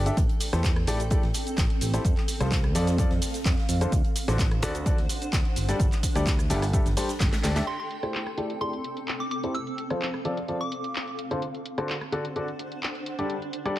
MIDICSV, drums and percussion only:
0, 0, Header, 1, 2, 480
1, 0, Start_track
1, 0, Key_signature, 0, "minor"
1, 0, Tempo, 468750
1, 176, Time_signature, 4, 2, 24, 8
1, 14121, End_track
2, 0, Start_track
2, 0, Title_t, "Drums"
2, 62, Note_on_c, 9, 42, 50
2, 68, Note_on_c, 9, 82, 33
2, 164, Note_off_c, 9, 42, 0
2, 170, Note_off_c, 9, 82, 0
2, 175, Note_on_c, 9, 42, 48
2, 176, Note_off_c, 9, 42, 0
2, 176, Note_on_c, 9, 36, 118
2, 176, Note_on_c, 9, 42, 94
2, 181, Note_on_c, 9, 82, 45
2, 278, Note_off_c, 9, 36, 0
2, 278, Note_off_c, 9, 42, 0
2, 284, Note_off_c, 9, 82, 0
2, 301, Note_on_c, 9, 42, 25
2, 306, Note_off_c, 9, 42, 0
2, 306, Note_on_c, 9, 42, 43
2, 408, Note_off_c, 9, 42, 0
2, 411, Note_on_c, 9, 42, 69
2, 415, Note_on_c, 9, 46, 106
2, 421, Note_on_c, 9, 82, 76
2, 513, Note_off_c, 9, 42, 0
2, 517, Note_off_c, 9, 46, 0
2, 523, Note_off_c, 9, 82, 0
2, 540, Note_on_c, 9, 38, 56
2, 542, Note_on_c, 9, 37, 61
2, 542, Note_on_c, 9, 42, 50
2, 548, Note_on_c, 9, 82, 32
2, 642, Note_off_c, 9, 38, 0
2, 644, Note_off_c, 9, 37, 0
2, 644, Note_off_c, 9, 42, 0
2, 648, Note_on_c, 9, 38, 106
2, 651, Note_off_c, 9, 82, 0
2, 655, Note_on_c, 9, 42, 50
2, 656, Note_on_c, 9, 36, 114
2, 659, Note_on_c, 9, 39, 110
2, 661, Note_on_c, 9, 82, 43
2, 663, Note_off_c, 9, 42, 0
2, 663, Note_on_c, 9, 42, 92
2, 750, Note_off_c, 9, 38, 0
2, 759, Note_off_c, 9, 36, 0
2, 761, Note_off_c, 9, 39, 0
2, 764, Note_off_c, 9, 82, 0
2, 766, Note_off_c, 9, 42, 0
2, 782, Note_on_c, 9, 37, 68
2, 782, Note_on_c, 9, 42, 24
2, 884, Note_off_c, 9, 37, 0
2, 884, Note_off_c, 9, 42, 0
2, 895, Note_on_c, 9, 46, 100
2, 896, Note_on_c, 9, 42, 60
2, 902, Note_on_c, 9, 82, 77
2, 998, Note_off_c, 9, 46, 0
2, 999, Note_off_c, 9, 42, 0
2, 1004, Note_off_c, 9, 82, 0
2, 1023, Note_on_c, 9, 42, 48
2, 1027, Note_off_c, 9, 42, 0
2, 1027, Note_on_c, 9, 42, 38
2, 1029, Note_on_c, 9, 82, 31
2, 1130, Note_off_c, 9, 42, 0
2, 1131, Note_off_c, 9, 82, 0
2, 1132, Note_on_c, 9, 42, 84
2, 1136, Note_off_c, 9, 42, 0
2, 1136, Note_on_c, 9, 36, 121
2, 1136, Note_on_c, 9, 42, 50
2, 1143, Note_on_c, 9, 82, 44
2, 1239, Note_off_c, 9, 36, 0
2, 1239, Note_off_c, 9, 42, 0
2, 1245, Note_off_c, 9, 82, 0
2, 1263, Note_on_c, 9, 42, 26
2, 1264, Note_on_c, 9, 38, 38
2, 1365, Note_off_c, 9, 42, 0
2, 1367, Note_off_c, 9, 38, 0
2, 1370, Note_on_c, 9, 42, 66
2, 1377, Note_on_c, 9, 46, 107
2, 1383, Note_on_c, 9, 82, 78
2, 1473, Note_off_c, 9, 42, 0
2, 1479, Note_off_c, 9, 46, 0
2, 1485, Note_off_c, 9, 82, 0
2, 1503, Note_on_c, 9, 42, 50
2, 1509, Note_on_c, 9, 82, 33
2, 1603, Note_on_c, 9, 38, 121
2, 1605, Note_off_c, 9, 42, 0
2, 1611, Note_off_c, 9, 82, 0
2, 1616, Note_on_c, 9, 36, 113
2, 1616, Note_on_c, 9, 42, 89
2, 1620, Note_on_c, 9, 39, 117
2, 1622, Note_on_c, 9, 82, 45
2, 1706, Note_off_c, 9, 38, 0
2, 1719, Note_off_c, 9, 36, 0
2, 1719, Note_off_c, 9, 42, 0
2, 1722, Note_off_c, 9, 39, 0
2, 1724, Note_off_c, 9, 82, 0
2, 1743, Note_on_c, 9, 42, 24
2, 1845, Note_off_c, 9, 42, 0
2, 1856, Note_on_c, 9, 46, 102
2, 1862, Note_on_c, 9, 42, 71
2, 1862, Note_on_c, 9, 82, 76
2, 1958, Note_off_c, 9, 46, 0
2, 1964, Note_off_c, 9, 42, 0
2, 1964, Note_off_c, 9, 82, 0
2, 1976, Note_on_c, 9, 38, 47
2, 1982, Note_on_c, 9, 42, 52
2, 1988, Note_on_c, 9, 82, 35
2, 2078, Note_off_c, 9, 38, 0
2, 2085, Note_off_c, 9, 42, 0
2, 2091, Note_off_c, 9, 82, 0
2, 2096, Note_on_c, 9, 36, 111
2, 2096, Note_on_c, 9, 42, 51
2, 2099, Note_off_c, 9, 42, 0
2, 2099, Note_on_c, 9, 42, 91
2, 2102, Note_on_c, 9, 82, 45
2, 2199, Note_off_c, 9, 36, 0
2, 2201, Note_off_c, 9, 42, 0
2, 2204, Note_off_c, 9, 82, 0
2, 2222, Note_on_c, 9, 42, 25
2, 2224, Note_on_c, 9, 38, 40
2, 2226, Note_on_c, 9, 39, 34
2, 2325, Note_off_c, 9, 42, 0
2, 2327, Note_off_c, 9, 38, 0
2, 2329, Note_off_c, 9, 39, 0
2, 2335, Note_on_c, 9, 42, 70
2, 2336, Note_on_c, 9, 46, 97
2, 2342, Note_on_c, 9, 82, 81
2, 2437, Note_off_c, 9, 42, 0
2, 2438, Note_off_c, 9, 46, 0
2, 2445, Note_off_c, 9, 82, 0
2, 2463, Note_on_c, 9, 37, 59
2, 2463, Note_on_c, 9, 42, 48
2, 2466, Note_on_c, 9, 38, 55
2, 2469, Note_on_c, 9, 82, 34
2, 2565, Note_off_c, 9, 37, 0
2, 2565, Note_off_c, 9, 42, 0
2, 2569, Note_off_c, 9, 38, 0
2, 2572, Note_off_c, 9, 82, 0
2, 2576, Note_on_c, 9, 36, 112
2, 2576, Note_on_c, 9, 42, 48
2, 2580, Note_on_c, 9, 39, 109
2, 2582, Note_on_c, 9, 38, 118
2, 2582, Note_on_c, 9, 82, 43
2, 2584, Note_off_c, 9, 42, 0
2, 2584, Note_on_c, 9, 42, 97
2, 2679, Note_off_c, 9, 36, 0
2, 2682, Note_off_c, 9, 39, 0
2, 2684, Note_off_c, 9, 38, 0
2, 2684, Note_off_c, 9, 82, 0
2, 2687, Note_off_c, 9, 42, 0
2, 2702, Note_on_c, 9, 37, 65
2, 2702, Note_on_c, 9, 42, 25
2, 2805, Note_off_c, 9, 37, 0
2, 2805, Note_off_c, 9, 42, 0
2, 2816, Note_on_c, 9, 46, 100
2, 2822, Note_on_c, 9, 82, 80
2, 2825, Note_on_c, 9, 42, 64
2, 2918, Note_off_c, 9, 46, 0
2, 2924, Note_off_c, 9, 82, 0
2, 2928, Note_off_c, 9, 42, 0
2, 2940, Note_on_c, 9, 38, 57
2, 2942, Note_on_c, 9, 42, 50
2, 2948, Note_on_c, 9, 82, 33
2, 3042, Note_off_c, 9, 38, 0
2, 3044, Note_off_c, 9, 42, 0
2, 3051, Note_off_c, 9, 82, 0
2, 3055, Note_on_c, 9, 42, 53
2, 3057, Note_off_c, 9, 42, 0
2, 3057, Note_on_c, 9, 36, 111
2, 3057, Note_on_c, 9, 42, 97
2, 3062, Note_on_c, 9, 82, 47
2, 3159, Note_off_c, 9, 36, 0
2, 3160, Note_off_c, 9, 42, 0
2, 3164, Note_off_c, 9, 82, 0
2, 3178, Note_on_c, 9, 38, 48
2, 3182, Note_on_c, 9, 42, 27
2, 3280, Note_off_c, 9, 38, 0
2, 3285, Note_off_c, 9, 42, 0
2, 3292, Note_on_c, 9, 46, 82
2, 3296, Note_off_c, 9, 46, 0
2, 3296, Note_on_c, 9, 46, 104
2, 3302, Note_on_c, 9, 82, 82
2, 3398, Note_off_c, 9, 46, 0
2, 3404, Note_off_c, 9, 82, 0
2, 3422, Note_on_c, 9, 42, 51
2, 3428, Note_on_c, 9, 82, 34
2, 3429, Note_on_c, 9, 38, 40
2, 3524, Note_off_c, 9, 42, 0
2, 3530, Note_off_c, 9, 82, 0
2, 3531, Note_off_c, 9, 38, 0
2, 3536, Note_on_c, 9, 42, 50
2, 3537, Note_on_c, 9, 36, 110
2, 3540, Note_on_c, 9, 39, 114
2, 3541, Note_on_c, 9, 38, 126
2, 3542, Note_on_c, 9, 82, 46
2, 3543, Note_off_c, 9, 42, 0
2, 3543, Note_on_c, 9, 42, 80
2, 3639, Note_off_c, 9, 36, 0
2, 3642, Note_off_c, 9, 39, 0
2, 3643, Note_off_c, 9, 38, 0
2, 3644, Note_off_c, 9, 82, 0
2, 3645, Note_off_c, 9, 42, 0
2, 3662, Note_on_c, 9, 42, 26
2, 3668, Note_on_c, 9, 38, 55
2, 3764, Note_off_c, 9, 42, 0
2, 3771, Note_off_c, 9, 38, 0
2, 3773, Note_on_c, 9, 42, 64
2, 3776, Note_on_c, 9, 46, 98
2, 3782, Note_on_c, 9, 82, 78
2, 3875, Note_off_c, 9, 42, 0
2, 3879, Note_off_c, 9, 46, 0
2, 3885, Note_off_c, 9, 82, 0
2, 3903, Note_on_c, 9, 42, 55
2, 3909, Note_on_c, 9, 82, 34
2, 4005, Note_off_c, 9, 42, 0
2, 4012, Note_off_c, 9, 82, 0
2, 4016, Note_on_c, 9, 42, 52
2, 4017, Note_on_c, 9, 36, 113
2, 4021, Note_off_c, 9, 42, 0
2, 4021, Note_on_c, 9, 42, 83
2, 4022, Note_on_c, 9, 82, 46
2, 4119, Note_off_c, 9, 36, 0
2, 4123, Note_off_c, 9, 42, 0
2, 4125, Note_off_c, 9, 82, 0
2, 4143, Note_on_c, 9, 42, 27
2, 4148, Note_off_c, 9, 42, 0
2, 4148, Note_on_c, 9, 42, 38
2, 4251, Note_off_c, 9, 42, 0
2, 4256, Note_on_c, 9, 46, 101
2, 4259, Note_on_c, 9, 42, 67
2, 4263, Note_on_c, 9, 82, 86
2, 4359, Note_off_c, 9, 46, 0
2, 4361, Note_off_c, 9, 42, 0
2, 4365, Note_off_c, 9, 82, 0
2, 4383, Note_on_c, 9, 37, 55
2, 4383, Note_on_c, 9, 42, 52
2, 4388, Note_on_c, 9, 38, 49
2, 4390, Note_on_c, 9, 82, 35
2, 4486, Note_off_c, 9, 37, 0
2, 4486, Note_off_c, 9, 42, 0
2, 4491, Note_off_c, 9, 38, 0
2, 4492, Note_off_c, 9, 82, 0
2, 4496, Note_on_c, 9, 42, 52
2, 4497, Note_on_c, 9, 36, 115
2, 4499, Note_off_c, 9, 42, 0
2, 4499, Note_on_c, 9, 42, 86
2, 4500, Note_on_c, 9, 39, 107
2, 4503, Note_on_c, 9, 82, 46
2, 4507, Note_on_c, 9, 38, 117
2, 4599, Note_off_c, 9, 36, 0
2, 4601, Note_off_c, 9, 42, 0
2, 4603, Note_off_c, 9, 39, 0
2, 4605, Note_off_c, 9, 82, 0
2, 4609, Note_off_c, 9, 38, 0
2, 4623, Note_on_c, 9, 37, 60
2, 4623, Note_on_c, 9, 42, 26
2, 4725, Note_off_c, 9, 37, 0
2, 4725, Note_off_c, 9, 42, 0
2, 4734, Note_on_c, 9, 42, 64
2, 4736, Note_on_c, 9, 46, 101
2, 4742, Note_on_c, 9, 82, 82
2, 4836, Note_off_c, 9, 42, 0
2, 4839, Note_off_c, 9, 46, 0
2, 4845, Note_off_c, 9, 82, 0
2, 4861, Note_on_c, 9, 42, 40
2, 4863, Note_off_c, 9, 42, 0
2, 4863, Note_on_c, 9, 42, 53
2, 4869, Note_on_c, 9, 82, 34
2, 4965, Note_off_c, 9, 42, 0
2, 4971, Note_off_c, 9, 82, 0
2, 4974, Note_on_c, 9, 42, 82
2, 4976, Note_on_c, 9, 36, 113
2, 4977, Note_off_c, 9, 42, 0
2, 4977, Note_on_c, 9, 42, 54
2, 4983, Note_on_c, 9, 82, 46
2, 5079, Note_off_c, 9, 36, 0
2, 5079, Note_off_c, 9, 42, 0
2, 5086, Note_off_c, 9, 82, 0
2, 5097, Note_on_c, 9, 38, 35
2, 5103, Note_on_c, 9, 42, 27
2, 5199, Note_off_c, 9, 38, 0
2, 5205, Note_off_c, 9, 42, 0
2, 5216, Note_on_c, 9, 46, 96
2, 5223, Note_on_c, 9, 82, 78
2, 5319, Note_off_c, 9, 46, 0
2, 5325, Note_off_c, 9, 82, 0
2, 5343, Note_on_c, 9, 42, 53
2, 5349, Note_on_c, 9, 82, 33
2, 5446, Note_off_c, 9, 42, 0
2, 5452, Note_off_c, 9, 82, 0
2, 5456, Note_on_c, 9, 36, 112
2, 5456, Note_on_c, 9, 38, 124
2, 5456, Note_on_c, 9, 42, 56
2, 5458, Note_off_c, 9, 42, 0
2, 5458, Note_on_c, 9, 42, 94
2, 5460, Note_on_c, 9, 39, 118
2, 5462, Note_on_c, 9, 82, 48
2, 5558, Note_off_c, 9, 38, 0
2, 5559, Note_off_c, 9, 36, 0
2, 5560, Note_off_c, 9, 42, 0
2, 5563, Note_off_c, 9, 39, 0
2, 5565, Note_off_c, 9, 82, 0
2, 5583, Note_on_c, 9, 42, 27
2, 5685, Note_off_c, 9, 42, 0
2, 5694, Note_on_c, 9, 42, 64
2, 5696, Note_on_c, 9, 46, 96
2, 5702, Note_on_c, 9, 82, 80
2, 5796, Note_off_c, 9, 42, 0
2, 5799, Note_off_c, 9, 46, 0
2, 5805, Note_off_c, 9, 82, 0
2, 5821, Note_on_c, 9, 38, 49
2, 5823, Note_on_c, 9, 42, 55
2, 5829, Note_on_c, 9, 82, 36
2, 5924, Note_off_c, 9, 38, 0
2, 5925, Note_off_c, 9, 42, 0
2, 5931, Note_off_c, 9, 82, 0
2, 5934, Note_on_c, 9, 42, 91
2, 5936, Note_off_c, 9, 42, 0
2, 5936, Note_on_c, 9, 36, 114
2, 5936, Note_on_c, 9, 42, 55
2, 5943, Note_on_c, 9, 82, 43
2, 6039, Note_off_c, 9, 36, 0
2, 6039, Note_off_c, 9, 42, 0
2, 6045, Note_off_c, 9, 82, 0
2, 6056, Note_on_c, 9, 38, 47
2, 6063, Note_on_c, 9, 42, 28
2, 6067, Note_on_c, 9, 39, 37
2, 6069, Note_on_c, 9, 82, 32
2, 6159, Note_off_c, 9, 38, 0
2, 6165, Note_off_c, 9, 42, 0
2, 6169, Note_off_c, 9, 39, 0
2, 6172, Note_off_c, 9, 82, 0
2, 6176, Note_on_c, 9, 36, 60
2, 6176, Note_on_c, 9, 46, 100
2, 6179, Note_on_c, 9, 42, 66
2, 6183, Note_on_c, 9, 82, 81
2, 6279, Note_off_c, 9, 36, 0
2, 6279, Note_off_c, 9, 46, 0
2, 6281, Note_off_c, 9, 42, 0
2, 6285, Note_off_c, 9, 82, 0
2, 6297, Note_on_c, 9, 38, 53
2, 6303, Note_on_c, 9, 37, 57
2, 6303, Note_on_c, 9, 42, 56
2, 6309, Note_on_c, 9, 82, 35
2, 6400, Note_off_c, 9, 38, 0
2, 6405, Note_off_c, 9, 37, 0
2, 6405, Note_off_c, 9, 42, 0
2, 6411, Note_off_c, 9, 82, 0
2, 6415, Note_on_c, 9, 42, 81
2, 6416, Note_off_c, 9, 42, 0
2, 6416, Note_on_c, 9, 36, 115
2, 6416, Note_on_c, 9, 42, 52
2, 6420, Note_on_c, 9, 39, 118
2, 6422, Note_on_c, 9, 82, 43
2, 6423, Note_on_c, 9, 38, 124
2, 6518, Note_off_c, 9, 42, 0
2, 6519, Note_off_c, 9, 36, 0
2, 6522, Note_off_c, 9, 39, 0
2, 6525, Note_off_c, 9, 38, 0
2, 6525, Note_off_c, 9, 82, 0
2, 6542, Note_on_c, 9, 37, 62
2, 6542, Note_on_c, 9, 42, 27
2, 6549, Note_on_c, 9, 82, 33
2, 6645, Note_off_c, 9, 37, 0
2, 6645, Note_off_c, 9, 42, 0
2, 6651, Note_off_c, 9, 82, 0
2, 6656, Note_on_c, 9, 46, 99
2, 6661, Note_on_c, 9, 42, 75
2, 6662, Note_on_c, 9, 82, 78
2, 6758, Note_off_c, 9, 46, 0
2, 6763, Note_off_c, 9, 42, 0
2, 6765, Note_off_c, 9, 82, 0
2, 6783, Note_on_c, 9, 37, 58
2, 6783, Note_on_c, 9, 46, 58
2, 6784, Note_on_c, 9, 38, 35
2, 6789, Note_on_c, 9, 82, 33
2, 6885, Note_off_c, 9, 37, 0
2, 6885, Note_off_c, 9, 46, 0
2, 6886, Note_off_c, 9, 38, 0
2, 6891, Note_off_c, 9, 82, 0
2, 6894, Note_on_c, 9, 42, 79
2, 6896, Note_off_c, 9, 42, 0
2, 6896, Note_on_c, 9, 36, 118
2, 6896, Note_on_c, 9, 42, 54
2, 6902, Note_on_c, 9, 82, 46
2, 6998, Note_off_c, 9, 42, 0
2, 6999, Note_off_c, 9, 36, 0
2, 7005, Note_off_c, 9, 82, 0
2, 7021, Note_on_c, 9, 38, 50
2, 7023, Note_on_c, 9, 42, 29
2, 7029, Note_on_c, 9, 82, 34
2, 7124, Note_off_c, 9, 38, 0
2, 7125, Note_off_c, 9, 42, 0
2, 7131, Note_off_c, 9, 82, 0
2, 7136, Note_on_c, 9, 46, 100
2, 7140, Note_off_c, 9, 46, 0
2, 7140, Note_on_c, 9, 46, 74
2, 7142, Note_on_c, 9, 82, 81
2, 7243, Note_off_c, 9, 46, 0
2, 7245, Note_off_c, 9, 82, 0
2, 7261, Note_on_c, 9, 38, 49
2, 7262, Note_on_c, 9, 42, 54
2, 7268, Note_on_c, 9, 82, 35
2, 7364, Note_off_c, 9, 38, 0
2, 7365, Note_off_c, 9, 42, 0
2, 7371, Note_off_c, 9, 82, 0
2, 7373, Note_on_c, 9, 38, 104
2, 7375, Note_on_c, 9, 42, 88
2, 7376, Note_off_c, 9, 38, 0
2, 7376, Note_off_c, 9, 42, 0
2, 7376, Note_on_c, 9, 36, 109
2, 7376, Note_on_c, 9, 38, 63
2, 7376, Note_on_c, 9, 42, 55
2, 7380, Note_on_c, 9, 39, 121
2, 7382, Note_on_c, 9, 82, 48
2, 7478, Note_off_c, 9, 36, 0
2, 7478, Note_off_c, 9, 38, 0
2, 7478, Note_off_c, 9, 42, 0
2, 7482, Note_off_c, 9, 39, 0
2, 7485, Note_off_c, 9, 82, 0
2, 7501, Note_on_c, 9, 38, 101
2, 7503, Note_off_c, 9, 38, 0
2, 7503, Note_on_c, 9, 38, 62
2, 7503, Note_on_c, 9, 42, 27
2, 7507, Note_off_c, 9, 42, 0
2, 7507, Note_on_c, 9, 42, 80
2, 7509, Note_on_c, 9, 82, 32
2, 7605, Note_off_c, 9, 38, 0
2, 7610, Note_off_c, 9, 42, 0
2, 7611, Note_off_c, 9, 82, 0
2, 7612, Note_on_c, 9, 42, 75
2, 7613, Note_on_c, 9, 38, 115
2, 7615, Note_off_c, 9, 38, 0
2, 7615, Note_on_c, 9, 38, 81
2, 7615, Note_on_c, 9, 46, 97
2, 7622, Note_on_c, 9, 82, 81
2, 7714, Note_off_c, 9, 42, 0
2, 7718, Note_off_c, 9, 38, 0
2, 7718, Note_off_c, 9, 46, 0
2, 7724, Note_off_c, 9, 82, 0
2, 7739, Note_on_c, 9, 38, 105
2, 7739, Note_on_c, 9, 42, 75
2, 7742, Note_off_c, 9, 38, 0
2, 7742, Note_off_c, 9, 42, 0
2, 7742, Note_on_c, 9, 38, 80
2, 7742, Note_on_c, 9, 42, 56
2, 7748, Note_on_c, 9, 82, 36
2, 7844, Note_off_c, 9, 38, 0
2, 7844, Note_off_c, 9, 42, 0
2, 7851, Note_off_c, 9, 82, 0
2, 7856, Note_on_c, 9, 42, 47
2, 7856, Note_on_c, 9, 49, 75
2, 7958, Note_off_c, 9, 42, 0
2, 7958, Note_off_c, 9, 49, 0
2, 7983, Note_on_c, 9, 42, 25
2, 8085, Note_off_c, 9, 42, 0
2, 8096, Note_on_c, 9, 42, 85
2, 8199, Note_off_c, 9, 42, 0
2, 8223, Note_on_c, 9, 37, 50
2, 8223, Note_on_c, 9, 42, 48
2, 8325, Note_off_c, 9, 37, 0
2, 8325, Note_off_c, 9, 42, 0
2, 8336, Note_on_c, 9, 42, 47
2, 8340, Note_on_c, 9, 39, 107
2, 8439, Note_off_c, 9, 42, 0
2, 8443, Note_off_c, 9, 39, 0
2, 8464, Note_on_c, 9, 37, 57
2, 8464, Note_on_c, 9, 42, 25
2, 8566, Note_off_c, 9, 37, 0
2, 8566, Note_off_c, 9, 42, 0
2, 8577, Note_on_c, 9, 42, 87
2, 8679, Note_off_c, 9, 42, 0
2, 8703, Note_on_c, 9, 42, 49
2, 8806, Note_off_c, 9, 42, 0
2, 8816, Note_on_c, 9, 42, 49
2, 8919, Note_off_c, 9, 42, 0
2, 8943, Note_on_c, 9, 42, 26
2, 9046, Note_off_c, 9, 42, 0
2, 9056, Note_on_c, 9, 42, 83
2, 9159, Note_off_c, 9, 42, 0
2, 9183, Note_on_c, 9, 42, 48
2, 9285, Note_off_c, 9, 42, 0
2, 9296, Note_on_c, 9, 42, 49
2, 9300, Note_on_c, 9, 39, 113
2, 9398, Note_off_c, 9, 42, 0
2, 9402, Note_off_c, 9, 39, 0
2, 9422, Note_on_c, 9, 42, 25
2, 9525, Note_off_c, 9, 42, 0
2, 9535, Note_on_c, 9, 42, 85
2, 9638, Note_off_c, 9, 42, 0
2, 9662, Note_on_c, 9, 42, 50
2, 9764, Note_off_c, 9, 42, 0
2, 9776, Note_on_c, 9, 42, 47
2, 9878, Note_off_c, 9, 42, 0
2, 9902, Note_on_c, 9, 42, 24
2, 10004, Note_off_c, 9, 42, 0
2, 10016, Note_on_c, 9, 42, 89
2, 10118, Note_off_c, 9, 42, 0
2, 10142, Note_on_c, 9, 37, 54
2, 10142, Note_on_c, 9, 42, 47
2, 10244, Note_off_c, 9, 37, 0
2, 10244, Note_off_c, 9, 42, 0
2, 10256, Note_on_c, 9, 42, 45
2, 10260, Note_on_c, 9, 39, 103
2, 10359, Note_off_c, 9, 42, 0
2, 10363, Note_off_c, 9, 39, 0
2, 10382, Note_on_c, 9, 37, 59
2, 10382, Note_on_c, 9, 42, 23
2, 10485, Note_off_c, 9, 37, 0
2, 10485, Note_off_c, 9, 42, 0
2, 10496, Note_on_c, 9, 42, 83
2, 10598, Note_off_c, 9, 42, 0
2, 10622, Note_on_c, 9, 42, 48
2, 10725, Note_off_c, 9, 42, 0
2, 10736, Note_on_c, 9, 42, 48
2, 10838, Note_off_c, 9, 42, 0
2, 10862, Note_on_c, 9, 42, 25
2, 10964, Note_off_c, 9, 42, 0
2, 10976, Note_on_c, 9, 42, 81
2, 11078, Note_off_c, 9, 42, 0
2, 11102, Note_on_c, 9, 42, 46
2, 11205, Note_off_c, 9, 42, 0
2, 11216, Note_on_c, 9, 42, 50
2, 11220, Note_on_c, 9, 39, 119
2, 11318, Note_off_c, 9, 42, 0
2, 11322, Note_off_c, 9, 39, 0
2, 11343, Note_on_c, 9, 42, 23
2, 11445, Note_off_c, 9, 42, 0
2, 11456, Note_on_c, 9, 42, 83
2, 11558, Note_off_c, 9, 42, 0
2, 11582, Note_on_c, 9, 42, 49
2, 11684, Note_off_c, 9, 42, 0
2, 11696, Note_on_c, 9, 42, 47
2, 11798, Note_off_c, 9, 42, 0
2, 11822, Note_on_c, 9, 42, 24
2, 11925, Note_off_c, 9, 42, 0
2, 11935, Note_on_c, 9, 42, 82
2, 12038, Note_off_c, 9, 42, 0
2, 12061, Note_on_c, 9, 37, 57
2, 12061, Note_on_c, 9, 42, 44
2, 12164, Note_off_c, 9, 37, 0
2, 12164, Note_off_c, 9, 42, 0
2, 12176, Note_on_c, 9, 42, 46
2, 12180, Note_on_c, 9, 39, 102
2, 12278, Note_off_c, 9, 42, 0
2, 12282, Note_off_c, 9, 39, 0
2, 12302, Note_on_c, 9, 37, 59
2, 12302, Note_on_c, 9, 42, 22
2, 12405, Note_off_c, 9, 37, 0
2, 12405, Note_off_c, 9, 42, 0
2, 12415, Note_on_c, 9, 42, 79
2, 12518, Note_off_c, 9, 42, 0
2, 12542, Note_on_c, 9, 42, 46
2, 12644, Note_off_c, 9, 42, 0
2, 12656, Note_on_c, 9, 42, 45
2, 12758, Note_off_c, 9, 42, 0
2, 12782, Note_on_c, 9, 42, 24
2, 12884, Note_off_c, 9, 42, 0
2, 12896, Note_on_c, 9, 42, 85
2, 12998, Note_off_c, 9, 42, 0
2, 13022, Note_on_c, 9, 42, 45
2, 13125, Note_off_c, 9, 42, 0
2, 13136, Note_on_c, 9, 42, 47
2, 13140, Note_on_c, 9, 39, 115
2, 13238, Note_off_c, 9, 42, 0
2, 13242, Note_off_c, 9, 39, 0
2, 13263, Note_on_c, 9, 42, 23
2, 13365, Note_off_c, 9, 42, 0
2, 13377, Note_on_c, 9, 42, 77
2, 13479, Note_off_c, 9, 42, 0
2, 13503, Note_on_c, 9, 42, 48
2, 13605, Note_off_c, 9, 42, 0
2, 13616, Note_on_c, 9, 42, 45
2, 13718, Note_off_c, 9, 42, 0
2, 13743, Note_on_c, 9, 42, 23
2, 13846, Note_off_c, 9, 42, 0
2, 13856, Note_on_c, 9, 42, 83
2, 13959, Note_off_c, 9, 42, 0
2, 13983, Note_on_c, 9, 37, 57
2, 13983, Note_on_c, 9, 42, 45
2, 14085, Note_off_c, 9, 37, 0
2, 14085, Note_off_c, 9, 42, 0
2, 14121, End_track
0, 0, End_of_file